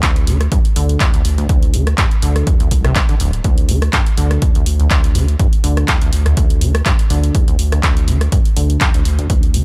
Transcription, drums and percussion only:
0.03 kick loud
0.03 clap loud
0.03 closed hi-hat medium
0.16 closed hi-hat soft
0.27 open hi-hat loud
0.41 cross-stick medium
0.41 closed hi-hat soft
0.52 kick loud
0.52 closed hi-hat medium
0.65 closed hi-hat soft
0.76 open hi-hat loud
0.89 closed hi-hat soft
1.00 kick loud
1.00 clap loud
1.00 closed hi-hat medium
1.14 closed hi-hat soft
1.25 open hi-hat loud
1.38 closed hi-hat soft
1.49 kick loud
1.49 closed hi-hat medium
1.63 closed hi-hat soft
1.74 open hi-hat loud
1.87 cross-stick medium
1.87 closed hi-hat soft
1.98 kick loud
1.98 clap loud
1.98 closed hi-hat medium
2.11 closed hi-hat soft
2.22 open hi-hat loud
2.36 cross-stick medium
2.36 closed hi-hat soft
2.47 kick loud
2.47 closed hi-hat medium
2.60 closed hi-hat soft
2.71 kick medium
2.71 open hi-hat loud
2.85 cross-stick medium
2.85 closed hi-hat soft
2.95 kick loud
2.95 clap loud
2.95 closed hi-hat medium
3.09 closed hi-hat soft
3.20 open hi-hat loud
3.33 closed hi-hat soft
3.44 kick loud
3.44 closed hi-hat medium
3.58 closed hi-hat soft
3.69 open hi-hat loud
3.82 cross-stick medium
3.82 closed hi-hat soft
3.93 kick loud
3.93 clap loud
3.93 closed hi-hat medium
4.06 closed hi-hat soft
4.17 open hi-hat loud
4.31 cross-stick medium
4.31 closed hi-hat soft
4.42 kick loud
4.42 closed hi-hat medium
4.55 closed hi-hat soft
4.66 open hi-hat loud
4.80 closed hi-hat soft
4.90 kick loud
4.90 clap loud
4.90 closed hi-hat medium
5.04 closed hi-hat soft
5.15 open hi-hat loud
5.28 closed hi-hat soft
5.39 kick loud
5.39 closed hi-hat medium
5.53 closed hi-hat soft
5.64 open hi-hat loud
5.77 cross-stick medium
5.77 closed hi-hat soft
5.88 kick loud
5.88 clap loud
5.88 closed hi-hat medium
6.02 closed hi-hat soft
6.13 open hi-hat loud
6.26 cross-stick medium
6.26 closed hi-hat soft
6.37 kick loud
6.37 closed hi-hat medium
6.50 closed hi-hat soft
6.61 open hi-hat loud
6.75 cross-stick medium
6.75 closed hi-hat soft
6.86 kick loud
6.86 clap loud
6.86 closed hi-hat medium
6.99 closed hi-hat soft
7.10 open hi-hat loud
7.24 closed hi-hat soft
7.35 kick loud
7.35 closed hi-hat medium
7.48 closed hi-hat soft
7.59 open hi-hat loud
7.72 cross-stick medium
7.72 closed hi-hat soft
7.83 kick loud
7.83 clap loud
7.83 closed hi-hat medium
7.97 closed hi-hat soft
8.08 open hi-hat loud
8.21 cross-stick medium
8.21 closed hi-hat soft
8.32 kick loud
8.32 closed hi-hat medium
8.45 closed hi-hat soft
8.57 open hi-hat loud
8.70 closed hi-hat soft
8.81 kick loud
8.81 clap loud
8.81 closed hi-hat medium
8.94 closed hi-hat soft
9.05 open hi-hat loud
9.19 closed hi-hat soft
9.30 kick loud
9.30 closed hi-hat medium
9.43 closed hi-hat soft
9.54 open hi-hat loud

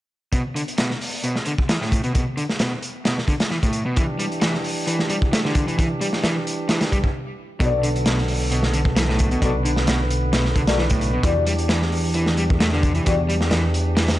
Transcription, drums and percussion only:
0.33 kick medium
0.33 closed hi-hat medium
0.56 closed hi-hat medium
0.68 closed hi-hat soft
0.78 snare loud
0.78 closed hi-hat medium
0.90 snare soft
1.01 open hi-hat medium
1.24 closed hi-hat medium
1.36 snare soft
1.46 closed hi-hat medium
1.58 kick medium
1.69 snare loud
1.69 closed hi-hat medium
1.81 snare soft
1.92 kick medium
1.92 closed hi-hat medium
2.04 closed hi-hat soft
2.15 kick loud
2.15 closed hi-hat medium
2.38 closed hi-hat medium
2.49 snare soft
2.59 snare loud
2.59 closed hi-hat medium
2.83 closed hi-hat medium
3.05 snare loud
3.05 closed hi-hat medium
3.18 snare soft
3.28 kick medium
3.28 closed hi-hat medium
3.40 snare medium
3.40 closed hi-hat medium
3.51 snare soft
3.63 kick medium
3.63 closed hi-hat medium
3.73 closed hi-hat medium
3.96 kick loud
3.96 closed hi-hat medium
4.20 closed hi-hat medium
4.32 closed hi-hat soft
4.41 snare loud
4.41 closed hi-hat medium
4.54 snare soft
4.64 open hi-hat medium
4.88 closed hi-hat medium
4.99 snare soft
5.10 closed hi-hat medium
5.22 kick medium
5.33 snare loud
5.33 closed hi-hat medium
5.45 snare soft
5.55 kick medium
5.55 closed hi-hat medium
5.68 closed hi-hat soft
5.79 kick loud
5.79 closed hi-hat medium
6.01 closed hi-hat medium
6.13 snare soft
6.24 snare loud
6.24 closed hi-hat medium
6.47 closed hi-hat medium
6.69 snare medium
6.69 closed hi-hat medium
6.81 snare loud
6.81 closed hi-hat medium
6.92 kick medium
6.92 closed hi-hat medium
7.04 kick loud
7.60 kick medium
7.60 closed hi-hat medium
7.83 closed hi-hat medium
7.96 closed hi-hat soft
8.06 snare loud
8.06 closed hi-hat medium
8.18 snare soft
8.28 open hi-hat medium
8.52 closed hi-hat medium
8.63 snare soft
8.74 closed hi-hat medium
8.85 kick medium
8.96 snare loud
8.96 closed hi-hat medium
9.09 snare soft
9.19 kick medium
9.19 closed hi-hat medium
9.31 closed hi-hat soft
9.42 kick loud
9.42 closed hi-hat medium
9.65 closed hi-hat medium
9.76 snare soft
9.87 snare loud
9.87 closed hi-hat medium
10.11 closed hi-hat medium
10.33 snare loud
10.33 closed hi-hat medium
10.45 snare soft
10.56 kick medium
10.56 closed hi-hat medium
10.67 snare loud
10.67 closed hi-hat medium
10.78 snare medium
10.90 kick medium
10.90 closed hi-hat medium
11.01 closed hi-hat medium
11.23 kick loud
11.23 closed hi-hat medium
11.47 closed hi-hat medium
11.58 closed hi-hat soft
11.69 snare loud
11.69 closed hi-hat medium
11.82 snare soft
11.92 open hi-hat medium
12.14 closed hi-hat medium
12.26 snare soft
12.37 closed hi-hat medium
12.50 kick medium
12.60 snare loud
12.60 closed hi-hat medium
12.73 snare soft
12.83 kick loud
12.83 closed hi-hat medium
12.95 closed hi-hat soft
13.06 kick loud
13.06 closed hi-hat medium
13.30 closed hi-hat medium
13.41 snare medium
13.51 snare loud
13.51 closed hi-hat medium
13.74 closed hi-hat medium
13.97 snare loud
13.97 closed hi-hat medium
14.08 snare loud
14.08 closed hi-hat medium

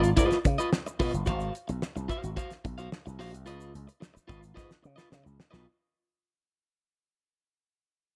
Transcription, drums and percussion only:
0.03 closed hi-hat medium
0.03 shaker medium
0.17 kick loud
0.17 closed hi-hat loud
0.17 shaker loud
0.31 snare soft
0.31 closed hi-hat soft
0.31 shaker medium
0.45 kick loud
0.45 closed hi-hat medium
0.45 shaker soft
0.58 closed hi-hat medium
0.58 shaker medium
0.73 snare loud
0.73 shaker medium
0.86 closed hi-hat soft
0.86 shaker medium
0.99 kick loud
0.99 open hi-hat medium
0.99 shaker medium
1.14 closed hi-hat medium
1.14 shaker medium
1.26 kick loud
1.26 closed hi-hat loud
1.26 shaker medium
1.40 closed hi-hat soft
1.40 shaker medium
1.55 closed hi-hat medium
1.55 shaker medium
1.69 closed hi-hat medium
1.69 shaker medium
1.82 snare loud
1.82 shaker medium
1.97 closed hi-hat soft
1.97 shaker medium
2.09 kick loud
2.09 closed hi-hat medium
2.09 shaker medium
2.24 closed hi-hat medium
2.24 shaker medium
2.37 kick medium
2.37 closed hi-hat medium
2.37 shaker medium
2.50 snare soft
2.50 closed hi-hat soft
2.50 shaker medium
2.65 kick loud
2.65 closed hi-hat medium
2.65 shaker soft
2.78 closed hi-hat soft
2.78 shaker medium
2.92 snare loud
2.92 shaker medium
3.06 closed hi-hat soft
3.06 shaker medium
3.20 open hi-hat medium
3.20 shaker medium
3.34 closed hi-hat medium
3.34 shaker medium
3.46 closed hi-hat loud
3.46 shaker medium
3.61 closed hi-hat soft
3.61 shaker medium
3.75 closed hi-hat medium
3.75 shaker medium
3.89 closed hi-hat medium
3.89 shaker medium
4.02 snare loud
4.02 shaker medium
4.17 closed hi-hat soft
4.17 shaker medium
4.29 kick loud
4.29 closed hi-hat medium
4.29 shaker medium
4.43 closed hi-hat soft
4.43 shaker medium
4.57 kick loud
4.57 snare medium
4.57 shaker medium
4.71 snare medium
4.71 shaker medium
4.84 shaker soft
4.98 snare medium
4.98 shaker medium
5.12 snare loud
5.12 shaker medium
5.27 shaker medium
5.40 snare loud
5.40 shaker medium
5.53 snare medium
5.53 shaker medium

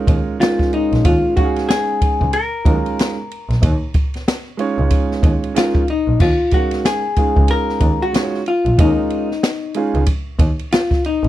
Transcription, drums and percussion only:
0.07 kick medium
0.07 ride medium
0.41 snare loud
0.41 hi-hat pedal medium
0.41 ride medium
0.59 kick medium
0.59 snare soft
0.73 ride soft
0.92 snare soft
0.92 ride soft
1.05 kick loud
1.05 ride medium
1.37 kick medium
1.37 ride soft
1.56 snare soft
1.56 ride soft
1.70 snare loud
1.70 hi-hat pedal medium
1.70 ride medium
2.02 kick medium
2.02 ride medium
2.21 kick medium
2.33 ride medium
2.65 kick medium
2.65 ride medium
2.86 ride soft
2.99 snare loud
2.99 hi-hat pedal soft
2.99 ride medium
3.31 ride medium
3.50 snare soft
3.50 ride soft
3.63 kick loud
3.63 ride medium
3.94 kick medium
3.94 ride medium
4.14 snare soft
4.14 ride soft
4.28 snare loud
4.28 hi-hat pedal medium
4.28 ride medium
4.59 ride medium
4.90 kick medium
4.90 ride medium
5.11 snare soft
5.23 kick medium
5.23 ride medium
5.44 ride soft
5.56 snare loud
5.56 hi-hat pedal medium
5.56 ride medium
5.75 kick medium
5.88 ride soft
6.20 kick loud
6.20 crash medium
6.51 kick medium
6.51 ride medium
6.71 snare soft
6.71 ride soft
6.85 snare loud
6.85 hi-hat pedal medium
6.85 ride medium
7.16 kick medium
7.16 ride medium
7.36 kick medium
7.48 ride medium
7.69 snare soft
7.80 kick medium
7.80 ride medium
8.14 snare loud
8.14 hi-hat pedal soft
8.14 ride medium
8.34 snare soft
8.46 ride medium
8.66 ride soft
8.78 kick loud
8.78 ride medium
9.10 ride soft
9.31 snare soft
9.43 snare loud
9.43 hi-hat pedal medium
9.43 ride medium
9.74 ride medium
9.95 ride soft
10.06 kick medium
10.06 ride medium
10.39 kick medium
10.39 ride medium
10.59 ride soft
10.72 snare loud
10.72 hi-hat pedal medium
10.72 ride medium
10.91 kick medium
10.91 snare soft
11.04 ride medium
11.24 ride soft

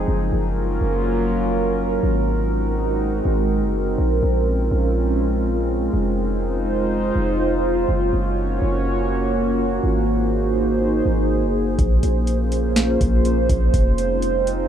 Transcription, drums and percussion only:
11.79 kick loud
11.79 closed hi-hat medium
12.03 closed hi-hat medium
12.27 closed hi-hat medium
12.52 closed hi-hat medium
12.76 snare loud
12.76 closed hi-hat medium
13.01 kick loud
13.01 closed hi-hat medium
13.25 closed hi-hat medium
13.49 kick medium
13.49 closed hi-hat medium
13.74 kick loud
13.74 closed hi-hat medium
13.98 closed hi-hat medium
14.22 closed hi-hat medium
14.47 closed hi-hat medium

